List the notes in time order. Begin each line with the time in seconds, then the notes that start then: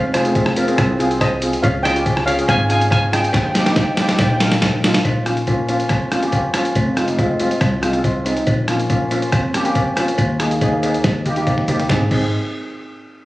Already playing: F1 C5 F5
0.13 C4 F4 G#4 C5, cross-stick, closed hi-hat, cowbell
0.25 C4 F4 G#4, closed hi-hat
0.35 kick, closed hi-hat, cowbell
0.46 cross-stick
0.56 C4 F4 A#4, closed hi-hat, cowbell
0.68 C4 F4 G#4, closed hi-hat
0.78 C2, kick, cross-stick, closed hi-hat, cowbell
0.99 C4 F4 G#4, closed hi-hat
1.11 closed hi-hat
1.21 C5 D#5, kick, cross-stick, closed hi-hat, cowbell
1.42 C4 F4 G#4, closed hi-hat
1.53 closed hi-hat
1.62 C#2 C#5 F5, kick, closed hi-hat, cowbell
1.83 C#4 F4 G#4 D#5 G5, cross-stick, closed hi-hat, cowbell
1.96 C#4 F4 G4, closed hi-hat
2.06 kick, closed hi-hat, cowbell
2.17 cross-stick
2.26 C#4 F4 G#4 C#5 F5, closed hi-hat, cowbell
2.37 C#4 F4 G#4, closed hi-hat
2.48 G#1 F5 G#5, kick, cross-stick, closed hi-hat, cowbell
2.69 C#4 F4 G#4 F5 G#5, closed hi-hat
2.81 closed hi-hat
2.90 F5 G#5, kick, cross-stick, closed hi-hat, cowbell
3.12 C#4 F4 G#4 D#5 G5, cross-stick, closed hi-hat
3.21 G5, closed hi-hat
3.28 G5
3.33 D#2 G5, kick, snare, closed hi-hat, cowbell
3.44 G5
3.52 A#3 D#4 G5, snare, closed hi-hat, cowbell
3.56 G4 G5
3.66 A#3 D#4 G4 G5, snare, closed hi-hat
3.74 G5, kick, snare, closed hi-hat, cowbell
3.81 G5
3.90 G5
3.96 A#3 D#4 G4 G5, snare, closed hi-hat, cowbell
4.02 G5
4.09 A#3 D#4 G4 G5, snare, closed hi-hat
4.17 A#1 G5, kick, snare, closed hi-hat, cowbell
4.24 G5
4.33 G5
4.39 A#3 D#4 A#4 G5, snare, closed hi-hat
4.52 snare, closed hi-hat
4.62 kick, snare, closed hi-hat, cowbell
4.84 A#3 D#4 F4, snare, closed hi-hat
4.94 snare, closed hi-hat
5.05 A#1, kick, closed hi-hat, cowbell
5.26 A#3 C#4 F4, cross-stick, closed hi-hat
5.37 closed hi-hat
5.47 A#3 C#4 F4, kick, closed hi-hat, cowbell
5.69 A#3 C#4 F4, closed hi-hat, cowbell
5.80 closed hi-hat
5.89 F2, kick, cross-stick, closed hi-hat, cowbell
6.12 A#3 C#4 F4, cross-stick, closed hi-hat
6.22 A#3 C#4 G4, closed hi-hat
6.32 kick, closed hi-hat, cowbell
6.54 A#3 C#4 F4, cross-stick, closed hi-hat, cowbell
6.65 closed hi-hat
6.75 F1, kick, closed hi-hat, cowbell
6.97 G#3 C4 F4, cross-stick, closed hi-hat
7.08 closed hi-hat
7.19 G#3 C4 F4, kick, closed hi-hat, cowbell
7.39 G#3 C4 F4, closed hi-hat, cowbell
7.51 closed hi-hat
7.61 C2, kick, cross-stick, closed hi-hat, cowbell
7.82 G#3 C4 F4, cross-stick, closed hi-hat
7.93 G#3 C4 F4, closed hi-hat
8.04 kick, closed hi-hat, cowbell
8.24 G#3 C4 D#4, closed hi-hat, cowbell
8.37 closed hi-hat
8.47 A#1, kick, closed hi-hat, cowbell
8.68 A#3 C#4 F4, cross-stick, closed hi-hat
8.80 closed hi-hat
8.90 A#3 C#4 F4, kick, closed hi-hat, cowbell
9.11 A#3 C#4 F4, closed hi-hat, cowbell
9.22 closed hi-hat
9.32 F2, kick, cross-stick, closed hi-hat, cowbell
9.54 A#3 C#4 G4, cross-stick, closed hi-hat
9.64 A#3 C#4 G4, closed hi-hat
9.75 kick, closed hi-hat, cowbell
9.97 A#3 C#4 F4, cross-stick, closed hi-hat, cowbell
10.08 closed hi-hat
10.18 D#2, kick, closed hi-hat, cowbell
10.39 A#3 D#4 G#4, cross-stick, closed hi-hat
10.51 closed hi-hat
10.61 A#3 D#4 G#4, kick, closed hi-hat, cowbell
10.83 A#3 D#4 G#4, closed hi-hat, cowbell
10.94 closed hi-hat
11.04 D#2, kick, snare, closed hi-hat, cowbell
11.26 A#3 D#4 G4, closed hi-hat, high tom
11.36 A#3 D#4 G4, closed hi-hat
11.47 kick, closed hi-hat, mid tom, cowbell
11.58 mid tom
11.68 A#3 D#4 G4, closed hi-hat, floor tom, cowbell
11.80 closed hi-hat, floor tom
11.89 G#1 C4 D#4 G#4, kick, snare, cowbell
12.11 G#1 C4 D#4 G#4, kick, crash, cowbell